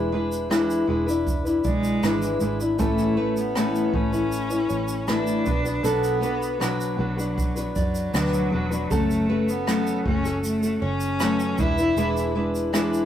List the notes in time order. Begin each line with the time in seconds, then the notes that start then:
Already playing: E1 E3 G#3 D4 E4 B4
0.12 G#3 D4 E4 B4
0.32 shaker
0.50 E3 G#3 D4 E4 B4, cross-stick, shaker
0.70 shaker
0.87 E1 G#3 D4 E4 B4
1.06 D4 E4 B4, shaker
1.27 kick, shaker
1.45 D4 E4 B4, shaker
1.64 B1 G#3 D5, kick, shaker
1.84 shaker
2.02 G#1 E3 G#3 D4 E4 B4, cross-stick, shaker
2.22 shaker
2.41 G#1 G#3 D4 E4 B4, shaker
2.60 D4 E4 B4, shaker
2.78 A1 A2 E3 A3 C#4 E4 A4 B4, kick, shaker
2.98 cross-stick, shaker
3.17 A3 C#4 E4 B4
3.37 B3, shaker
3.56 A2 E3 A3 C#4 E4 B4, cross-stick, shaker
3.75 shaker
3.94 A1 A3 C#4 E4 B4, kick
4.13 A3 C#4 E4 B4, shaker
4.32 shaker
4.50 A3 C#4 E4 B4, shaker
4.69 A1 C#5, shaker
4.88 shaker
5.07 A2 E3 A3 D4 E4 B4, cross-stick, shaker
5.27 shaker
5.45 B1 B3 D4 F#4 B4, kick, shaker
5.64 B3 D4 F#4 B4, shaker
5.83 B1 B2 F#3 B3 D4 F#4 A4 B4, shaker
6.04 shaker
6.21 B3 D4 F#4 B4, shaker
6.43 shaker
6.60 B2 F#3 B3 D4 F#4 B4, cross-stick, shaker
6.81 shaker
6.98 B1 B3 D4 F#4 B4
7.17 B3 D4 F#4 B4, shaker
7.38 kick, shaker
7.56 B3 D4 F#4 B4, shaker
7.75 F#2 F#3 D5, kick, shaker
7.95 shaker
8.13 D2 B2 F#3 B3 D4 F#4 B4, cross-stick, shaker
8.34 shaker
8.52 E1 B3 D4 F#4 B4
8.70 B3 D4 F#4 B4, shaker
8.90 F#1 F#3 A3 C#4 F#4 A4, kick, shaker
9.11 shaker
9.29 A3 C#4 F#4 A4 B4
9.49 B3, shaker
9.67 F#3 A3 C#4 F#4 A4, cross-stick, shaker
9.87 shaker
10.06 F#1 A3 C#4 F#4 A4, kick
10.25 C#4 F#4 A4, shaker
10.44 A3, shaker
10.63 C#4 F#4 A4, shaker
10.82 F#1 C#4 C#5
11.00 shaker
11.20 F#3 A3 C#4 F#4 A4 B4, cross-stick, shaker
11.40 shaker
11.58 E1 G#3 D4 E4 B4, kick, shaker
11.78 D4 E4 B4, shaker
11.97 E1 E3 G#3 D4 E4 G#4 B4, shaker
12.17 shaker
12.35 G#3 D4 E4 B4
12.55 shaker
12.73 E3 G#3 D4 E4 B4, cross-stick, shaker
12.94 shaker